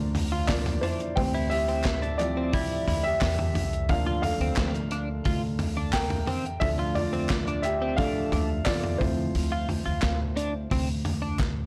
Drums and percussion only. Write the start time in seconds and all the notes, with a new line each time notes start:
0.15 floor tom, hi-hat pedal, open hi-hat
0.48 kick, snare, clap, hi-hat pedal, open hi-hat
0.66 snare, floor tom, open hi-hat
0.83 floor tom, hi-hat pedal, open hi-hat
1.00 hi-hat pedal
1.17 kick, hi-hat pedal, open hi-hat
1.51 hi-hat pedal, open hi-hat
1.69 open hi-hat
1.84 kick, snare, clap, hi-hat pedal, open hi-hat
2.03 hi-hat pedal
2.19 clap, hi-hat pedal, open hi-hat
2.53 kick, hi-hat pedal, open hi-hat
2.88 floor tom, hi-hat pedal, open hi-hat
3.21 kick, snare, clap, hi-hat pedal, open hi-hat
3.39 floor tom, open hi-hat
3.55 floor tom, hi-hat pedal, open hi-hat
3.73 hi-hat pedal
3.89 kick, hi-hat pedal, open hi-hat
4.23 floor tom, hi-hat pedal, open hi-hat
4.41 open hi-hat
4.56 kick, snare, clap, hi-hat pedal, open hi-hat
4.74 hi-hat pedal
4.91 hi-hat pedal, open hi-hat
5.25 kick, hi-hat pedal, open hi-hat
5.59 floor tom, hi-hat pedal, open hi-hat
5.93 kick, snare, clap, hi-hat pedal, open hi-hat
6.10 floor tom, open hi-hat
6.27 floor tom, hi-hat pedal, open hi-hat
6.45 hi-hat pedal
6.61 kick, hi-hat pedal, open hi-hat
6.95 floor tom, hi-hat pedal, open hi-hat
7.13 open hi-hat
7.29 kick, snare, clap, hi-hat pedal, open hi-hat
7.47 hi-hat pedal
7.64 clap, hi-hat pedal, open hi-hat
7.98 kick, hi-hat pedal, open hi-hat
8.32 floor tom, hi-hat pedal, open hi-hat
8.66 kick, snare, clap, hi-hat pedal, open hi-hat
8.84 floor tom
9.01 kick, floor tom, hi-hat pedal, open hi-hat
9.35 hi-hat pedal, open hi-hat
9.69 floor tom, hi-hat pedal, open hi-hat
10.02 kick, snare, clap, hi-hat pedal, open hi-hat
10.37 hi-hat pedal, open hi-hat
10.71 kick, hi-hat pedal, open hi-hat
11.05 floor tom, hi-hat pedal, open hi-hat
11.39 kick, snare, clap